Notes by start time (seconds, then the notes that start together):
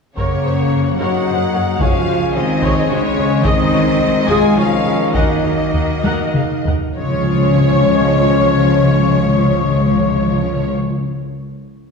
0.16 F#2 C#3 A#3 C#4 A#4 C#5 F#5, taiko
0.44 F#2 G#4 C5
0.71 F#2 A#4 C#5
0.98 F#2 F#3 D#4 F#4 A#4 C#5 F#5
1.26 F#2 G#4 C5
1.53 F#2 A#4 C#5
1.80 C#2 C#3 F3 G#3 C#4 F4 G#4 C#5 F5 G#5, taiko
2.07 C#2 F#4 C5
2.34 C#2 D#3 C4 D#4 G#4 C#5 D#5
2.62 C#2 G#4 C#5, taiko
2.89 C#2 C#3 G#3 C#4 F#4 C5 C#5
3.17 C#2 G#4 C#5
3.43 C2 D#3 C4 D#4 G#4 D#5, taiko
3.73 C2 F#4 C#5
4.00 C2 G#4 D#5
4.25 C2 G#3 G#4 D#5 G#5, taiko
4.30 F4
4.55 C2 F3 C#4 F4 F#4 C#5 F5
4.85 C2 G#4 D#5
5.13 D#2 D#3 F#3 A#3 D#4 F#4 A#4 D#5 F#5, taiko
5.43 D#2 G#4 F5
5.73 D#2 A#4 F#5, taiko low
6.04 D#2 A#4 F#5, taiko high
6.34 D#2 G#4 F5, taiko mid
6.66 D#2 A#4 F#5, taiko low
6.96 C#2 C#3 F3 G#3 C#4 F4 G#4 C#5
7.03 C#3
7.09 C#3
7.16 C#3
7.22 C#3
7.29 C#3
7.35 C#3
7.41 C#3
7.47 C#3
7.53 C#3
7.60 C#3
7.67 C#3
7.73 C#3
7.79 C#3
7.85 C#3
7.91 C#3
7.97 C#3
8.03 C#3
8.09 C#3
8.16 C#3
8.22 C#3
8.28 C#3
8.34 C#3
8.40 C#3
8.47 C#3
8.53 C#3
8.59 C#3
8.67 C#3
8.73 C#3
8.79 C#3
8.85 C#3
8.91 C#3
8.97 C#3
9.04 C#3
9.10 C#3
9.17 C#3
9.24 C#3
9.30 C#3
9.36 C#3
9.43 C#3
9.49 C#3
9.55 C#3
9.61 C#3
9.68 C#3
9.74 C#3
9.80 C#3
9.86 C#3
9.93 C#3
9.99 C#3
10.05 C#3
10.11 C#3
10.18 C#3
10.25 C#3
10.31 C#3
10.37 C#3
10.44 C#3
10.50 C#3
10.56 C#3
10.62 C#3